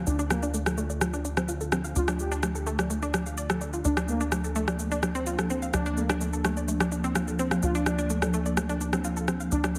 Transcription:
Already playing: D3 A3 D4 F4
0.07 D2 D4, shaker
0.19 D4, shaker
0.30 A3 A#3, cross-stick, low conga, shaker
0.43 D4, shaker
0.54 A3, shaker
0.66 A4, cross-stick, low conga, shaker
0.78 A3, shaker
0.90 D5, shaker
1.01 A3, cross-stick, low conga, shaker
1.13 D4, shaker
1.25 D4, shaker
1.37 C4, cross-stick, low conga, shaker
1.49 F4, shaker
1.61 A4, shaker
1.72 C4, cross-stick, low conga, shaker
1.84 F5, shaker
1.96 D2 D4 F4, shaker
2.08 D4, cross-stick, low conga, shaker
2.19 A3 G4, shaker
2.32 D4, shaker
2.43 A3, cross-stick, low conga, shaker
2.55 A4, shaker
2.67 A3, shaker
2.79 D5, cross-stick, low conga, shaker
2.90 A3, shaker
3.02 D4, shaker
3.14 D4, cross-stick, low conga, shaker
3.26 F5, shaker
3.38 D5, shaker
3.50 A4, cross-stick, low conga, shaker
3.61 D4, shaker
3.73 F4, shaker
3.85 D2 F3 A#3 D4, shaker
3.97 D4, cross-stick, low conga, shaker
4.08 A3 A#3, shaker
4.21 D4, shaker
4.32 A3, cross-stick, low conga, shaker
4.44 A4, shaker
4.56 A3, shaker
4.68 D5, cross-stick, low conga, shaker
4.79 A3, shaker
4.91 D4, shaker
5.03 D4, cross-stick, low conga, shaker
5.15 C4, shaker
5.26 F4, shaker
5.39 A4, cross-stick, low conga, shaker
5.50 C4, shaker
5.62 F5, shaker
5.74 D2 D4, cross-stick, low conga, shaker
5.86 D4, shaker
5.97 A3 A#3, shaker
6.10 D4, cross-stick, low conga, shaker
6.21 A3, shaker
6.33 A4, shaker
6.45 A3, cross-stick, low conga, shaker
6.57 D5, shaker
6.68 A3, shaker
6.80 D4, cross-stick, low conga, shaker
6.92 D4, shaker
7.04 C4, shaker
7.15 F4, cross-stick, low conga, shaker
7.28 A4, shaker
7.39 C4, shaker
7.51 F5, cross-stick, low conga, shaker
7.63 D2 D4 F4, shaker
7.75 D4, shaker
7.86 A3 D4, cross-stick, low conga, shaker
7.99 D4, shaker
8.10 A3, shaker
8.22 A4, cross-stick, low conga, shaker
8.34 A3, shaker
8.46 D5, shaker
8.57 A3, cross-stick, low conga, shaker
8.69 D4, shaker
8.81 D4, shaker
8.93 C4, cross-stick, low conga, shaker
9.04 F4, shaker
9.17 A4, shaker
9.28 C4, cross-stick, low conga, shaker
9.40 F5, shaker
9.52 D2 D4, shaker
9.64 D4, cross-stick, low conga, shaker
9.75 A3 A#3, shaker

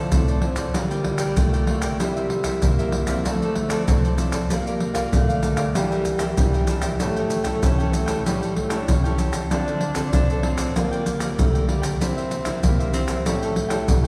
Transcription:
Already playing: F3
0.11 A2 F3 A3 C4 E4 F4 A4 C5 D5, pandeiro, maracas, surdo
0.28 A4 C5 D5, pandeiro, maracas
0.41 F3 C4 E4, pandeiro
0.56 A4 C5 D5, pandeiro, maracas, surdo
0.74 D3 G3 A#3 F4 A#4 D5 G5, pandeiro, maracas, surdo
0.91 G3 A#3 F4 A#4 D5 G5, pandeiro, maracas
1.04 muted cavaquinho stroke, pandeiro, surdo
1.18 A#4 D5 G5, pandeiro, maracas
1.37 D3 G3 A3 A#3 F4, pandeiro, maracas, surdo
1.53 A#4 D5 G5, pandeiro, maracas
1.67 G3 A#3 F4 A#4 D5 G5, pandeiro, surdo
1.81 A#4 D5 G5, pandeiro, maracas, surdo
2.00 C3 G3 A#3 E4 A#4 C5 E5, pandeiro, maracas, surdo
2.16 A#4 C5 E5, pandeiro, maracas
2.30 pandeiro
2.43 G3 A#3 E4 A#4 C5 E5, pandeiro, maracas, surdo
2.61 G2 A#3 E4 A#4 C5 E5, pandeiro, maracas, surdo
2.78 G3 A#3 E4 A#4 C5 E5, pandeiro, maracas
2.92 pandeiro
3.06 F3 C4 E4 A#4 C5 E5, pandeiro, maracas, surdo
3.24 D3 A3 F4 A4 C5 D5, pandeiro, maracas, surdo
3.41 A4 C5 D5, pandeiro, maracas
3.55 muted cavaquinho stroke, pandeiro, surdo
3.69 F3 C4 E4 A4 C5 D5, pandeiro, maracas
3.87 A2, pandeiro, maracas, surdo
4.04 A4 C5 D5, pandeiro, maracas
4.17 F3 C4 E4 F4 A4 C5 D5, pandeiro, maracas
4.31 A4 C5 D5, pandeiro, maracas, surdo
4.49 G3 A#3 F4 G4 A4 A#4 D5 F5, pandeiro, maracas, surdo
4.66 A#4 D5 F5, pandeiro, maracas
4.80 pandeiro
4.94 A#3 F4 A4 A#4 D5 F5, pandeiro, maracas, surdo
5.12 D3 A3 G4 A#4 D5 F5, pandeiro, maracas, surdo
5.28 D5 F5, pandeiro, maracas
5.42 A#3 F4 A4, pandeiro, maracas
5.56 A#4 D5 F5, pandeiro, maracas, surdo
5.74 E3 G3 A#3 D4 G4 A#4 E5 G5, pandeiro, maracas, surdo
5.91 A#4 E5 G5, pandeiro, maracas
6.04 muted cavaquinho stroke, pandeiro, maracas, surdo
6.18 A#3 D4 G4 A#4 E5 G5, pandeiro, maracas
6.37 E3 G3, pandeiro, maracas, surdo
6.53 A#4 E5 G5, pandeiro, maracas
6.67 A#3 D4 G4 A#4 E5 G5, pandeiro, maracas
6.81 A#4 E5 G5, pandeiro, maracas, surdo
7.00 A2 G3 A3 C#4 E4 G4 A4 C#5 G5, pandeiro, maracas, surdo
7.16 A4 C#5 G5, pandeiro, maracas
7.30 pandeiro, maracas
7.44 G3 C#4 E4 A4 C#5 G5, pandeiro, maracas, surdo
7.62 E3 C#4 G4 A4 C#5 G5, pandeiro, maracas, surdo
7.78 G3 C#4 E4 A4 C#5 G5, pandeiro, maracas
7.93 A3, pandeiro, maracas
8.06 G3 C#4 E4 A4 C#5 G5, pandeiro, maracas, surdo
8.25 A2 G3 C#4 E4 G4 A4 C#5 G5, pandeiro, maracas, surdo
8.41 A4 C#5 G5, pandeiro, maracas
8.55 A3, muted cavaquinho stroke, pandeiro, surdo
8.69 G3 C#4 E4 A4 C#5 G5, pandeiro, maracas
8.81 D4
8.88 E3 C#4, pandeiro, maracas, surdo
9.04 G3 C#4 E4 A4 C#5 G5, pandeiro, maracas
9.17 G4 A4 C#5 G5, pandeiro, maracas, surdo
9.32 A4 C#5 G5, pandeiro, maracas, surdo
9.50 D3 C4 D4 F4 A4 C5 D5, pandeiro, maracas, surdo
9.67 A4 C5 D5, pandeiro, maracas
9.81 pandeiro
9.94 C4 F4 A4 C5 D5, pandeiro, maracas, surdo
10.12 A2 D4 F4 A4 C5 D5, pandeiro, maracas, surdo
10.29 A4 C5 D5, pandeiro, maracas
10.43 C4 F4 A4, pandeiro
10.57 A4 C5 D5, pandeiro, maracas, surdo
10.75 D3 G3 A#3 F4 A#4 D5 G5, pandeiro, maracas, surdo
10.91 A#4 D5 G5, pandeiro, maracas
11.05 muted cavaquinho stroke, pandeiro, maracas, surdo
11.19 G3 A#3 F4 A#4 D5 G5, pandeiro, maracas
11.38 D3 A3, pandeiro, maracas, surdo
11.54 A#4 D5 G5, pandeiro, maracas
11.67 G3 A#3 F4 A#4 D5 G5, pandeiro
11.82 A#4 D5 G5, pandeiro, maracas, surdo
12.00 C3 A#3 C4 D4 E4 A#4 C5 E5, pandeiro, maracas, surdo
12.17 A#4 C5 E5, pandeiro, maracas
12.31 pandeiro, maracas
12.45 A#3 D4 E4 A#4 C5 E5, pandeiro, maracas, surdo
12.63 G3 A#3 E4 A#4 C5 E5, pandeiro, maracas, surdo
12.79 A#4 C5 E5, pandeiro, maracas
12.93 A#3 C4 D4 E4, pandeiro, maracas
13.07 A#4 C5 E5, pandeiro, maracas, surdo
13.25 A2 G3 A3 C#4 E4 G4 A4 C#5 G5, pandeiro, maracas, surdo
13.42 A4 C#5 G5, pandeiro, maracas
13.55 muted cavaquinho stroke, pandeiro, surdo
13.69 G3 C#4 E4 A4 C#5 G5, pandeiro, maracas
13.88 E3, pandeiro, maracas, surdo
14.04 G5

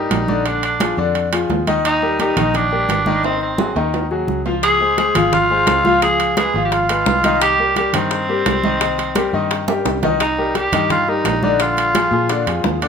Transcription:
Already playing: G3 D#4 G4 A#4
0.10 A#1, high conga, high timbale, low timbale
0.28 D3 D4 D5, high conga
0.46 D3 D4 D5, high conga, high timbale
0.63 D4, high conga, high timbale
0.80 F3 F4 G#4, high conga, high timbale, low timbale
0.97 F2 D3 D4 D5, high conga
1.15 high conga, high timbale
1.32 F3 F4 G#4, high conga, high timbale
1.50 D#2, high conga, low timbale
1.67 D#3 D#4 D#5, high conga, high timbale
1.85 D#4, high conga, high timbale
2.02 G3 G4 A#4, high conga
2.19 G3 D#4 G4 A#4, high conga, high timbale, low timbale
2.37 A#1 D#3 D#4 D#5, high conga, low conga, high timbale
2.54 D4, high conga, low conga, high timbale
2.71 G3 G4 A#4, high conga
2.89 G#1, high conga, high timbale, low timbale
3.06 D#3 D#4 D#5, high conga
3.23 D#3 C4 D#4 D#5, high conga, high timbale
3.41 C4, high conga
3.58 F#3 F#4 G#4, high conga, high timbale
3.76 D#2 D#3 D#4 D#5, high conga, high timbale
3.94 high conga, low timbale
4.11 F#3 F#4 G#4, high conga
4.27 C#2, high conga
4.46 F3 F4 F5, low timbale
4.63 G#4, high bongo, high conga, high timbale
4.80 G#3 G#4 C5, high conga
4.98 G#3 G#4 C5, high bongo, high conga, high timbale, low timbale
5.15 G#1 F3 F4 F5, high conga, low conga, high timbale
5.33 F4, high bongo, high conga, low conga, high timbale
5.50 G#3 G#4 C5, high conga
5.67 C#2, high bongo, low bongo, high conga, high timbale, low timbale
5.85 F3 F4 F5, high conga
6.02 F3 F4 G#4 F5, high bongo, high conga, high timbale
6.20 high bongo, high conga, high timbale
6.37 G#3 G#4 B4, high bongo, high conga, high timbale, low timbale
6.54 G#1 F3 F4 F5, high conga
6.65 G4
6.72 F4, high bongo, high conga, high timbale
6.89 G#3 G#4 B4, high bongo, high conga, high timbale
7.06 C2, high bongo, low bongo, high conga, low timbale
7.24 D#3 D#4 D#5, high bongo, high conga, high timbale
7.41 G4, high bongo, high conga, high timbale
7.59 G3 G4 A#4, high conga
7.76 G3 G4 A#4, high bongo, high conga, high timbale, low timbale
7.93 G2 D#3 C4 D#4 D#5, high conga, low conga, high timbale
8.11 high bongo, high conga, high timbale
8.29 G3 G4 A#4, high conga
8.46 C2, high bongo, low bongo, high conga, high timbale, low timbale
8.64 D#3 D#4 D#5, high conga
8.81 D#3 D#4 D#5, high bongo, high conga, high timbale
8.98 high bongo, high conga, high timbale
9.15 G3 G4 A#4, high bongo, high conga, high timbale, low timbale
9.33 G2 D#3 D#4 D#5, high conga
9.51 high bongo, high conga, high timbale
9.68 G3 G4 A#4, high bongo, high conga, high timbale
9.85 C2, high bongo, low bongo, high timbale
10.03 D#3 D#4 D#5, high bongo, low conga, low timbale
10.20 D#4, high bongo, high conga, high timbale
10.38 G3 G4 A#4, high conga
10.55 G4, high bongo, high conga, high timbale, low timbale
10.72 G2 D#3 D#4 D#5, high conga, low conga, high timbale
10.90 F4, high bongo, high conga, low conga, high timbale
11.08 G3 D#4 G4 A#4, high conga
11.24 A#1, high bongo, low bongo, high conga, high timbale, low timbale
11.43 D3 D4 D#4 D5, high conga
11.60 D3 D4 F4 D5, high bongo, high conga, high timbale
11.77 high bongo, high conga, high timbale
11.95 F3 F4 G#4, high bongo, high conga, high timbale, low timbale
12.11 A#2 F3 F4 G#4, high conga
12.29 D3 D4 D5, high bongo, high conga, high timbale
12.47 F2 F3 F4 G#4, high bongo, high conga, high timbale
12.64 D#2, high bongo, low bongo, high conga, low timbale
12.82 D3 D4 D5, high bongo, high timbale

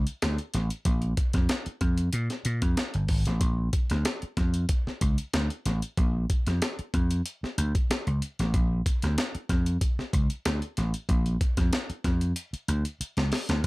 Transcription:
0.07 closed hi-hat
0.22 D2, snare, closed hi-hat
0.38 closed hi-hat
0.54 A1, snare, closed hi-hat
0.70 closed hi-hat
0.85 A#1, kick, closed hi-hat
1.02 closed hi-hat
1.17 kick, closed hi-hat
1.33 F2, kick, snare, closed hi-hat
1.49 snare, closed hi-hat
1.66 muted slap bass stroke, closed hi-hat
1.81 F2, kick, closed hi-hat
1.98 closed hi-hat
2.13 A#2, closed hi-hat
2.30 snare, closed hi-hat
2.45 A#2, closed hi-hat
2.62 F2, kick, closed hi-hat
2.77 snare, closed hi-hat
2.94 G1, closed hi-hat
3.08 G#1, kick, open hi-hat
3.25 A1, snare, closed hi-hat
3.41 A#1, kick, closed hi-hat
3.73 kick, closed hi-hat
3.90 D2, snare, closed hi-hat
4.05 snare, closed hi-hat
4.22 muted slap bass stroke, closed hi-hat
4.37 F2, kick, snare, closed hi-hat
4.54 closed hi-hat
4.69 kick, closed hi-hat
4.87 muted slap bass stroke, snare
5.01 C#2, kick, closed hi-hat
5.18 closed hi-hat
5.33 D2, snare, closed hi-hat
5.50 closed hi-hat
5.66 A1, snare, closed hi-hat
5.82 closed hi-hat
5.97 A#1, kick, closed hi-hat
6.30 kick, closed hi-hat
6.47 F2, snare, closed hi-hat
6.62 snare, closed hi-hat
6.79 muted slap bass stroke, closed hi-hat
6.94 F2, kick, closed hi-hat
7.11 closed hi-hat
7.26 closed hi-hat
7.43 muted slap bass stroke, snare
7.58 D2, closed hi-hat
7.75 kick, closed hi-hat
7.90 muted slap bass stroke, snare, closed hi-hat
8.07 C#2, closed hi-hat
8.22 closed hi-hat
8.39 A1, snare, closed hi-hat
8.54 A#1, kick, closed hi-hat
8.86 kick, closed hi-hat
9.02 D2, snare, closed hi-hat
9.18 snare, closed hi-hat
9.35 muted slap bass stroke, closed hi-hat
9.49 F2, kick, snare, closed hi-hat
9.66 closed hi-hat
9.81 kick, closed hi-hat
9.99 muted slap bass stroke, snare
10.13 C#2, kick, closed hi-hat
10.30 closed hi-hat
10.45 D2, snare, closed hi-hat
10.62 closed hi-hat
10.77 A1, snare, closed hi-hat
10.94 closed hi-hat
11.09 A#1, kick, closed hi-hat
11.26 closed hi-hat
11.41 kick, closed hi-hat
11.57 F2, kick, snare, closed hi-hat
11.73 snare, closed hi-hat
11.90 muted slap bass stroke, closed hi-hat
12.04 F2, kick, snare, closed hi-hat
12.21 closed hi-hat
12.36 closed hi-hat
12.53 muted slap bass stroke, closed hi-hat
12.68 D2, closed hi-hat
12.85 closed hi-hat
13.01 muted slap bass stroke, closed hi-hat
13.17 C#2, snare, closed hi-hat
13.32 snare, open hi-hat
13.49 D2, snare, closed hi-hat

